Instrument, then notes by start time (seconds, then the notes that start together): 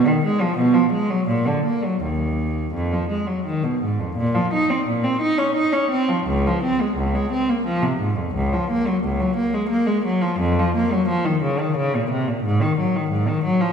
cello
0.07 D#3
0.25 G#3
0.42 F3
0.58 B2
0.74 F3
0.93 G#3
1.10 F#3
1.28 A#2
1.47 D3
1.66 A#3
1.85 F#3
2.02 D#2
2.74 F2
2.92 F3
3.10 G#3
3.27 F#3
3.46 D#3
3.64 B2
3.83 G#2
4.00 F2
4.17 A#2
4.35 F3
4.54 D#4
4.70 C4
4.87 A#2
5.04 C4
5.21 D#4
5.38 C#4
5.55 D#4
5.73 C#4
5.91 C4
6.09 F3
6.27 C#2
6.47 F3
6.64 C4
6.81 G#3
6.97 C#2
7.15 G#3
7.32 C4
7.49 A#3
7.66 F3
7.82 C3
8.00 G#2
8.17 F2
8.34 C#2
8.53 F3
8.71 A#3
8.87 F#3
9.04 C#2
9.20 F#3
9.36 A#3
9.54 G#3
9.69 A#3
9.87 G#3
10.05 F#3
10.21 F3
10.39 F2
10.59 F3
10.76 A#3
10.93 F#3
11.08 F3
11.25 D#3
11.43 C#3
11.60 D#3
11.77 C#3
11.95 A#2
12.11 C3
12.28 A#2
12.44 G#2
12.61 D#3
12.78 F#3
12.96 D#3
13.11 G#2
13.28 D#3
13.44 F#3
13.61 F3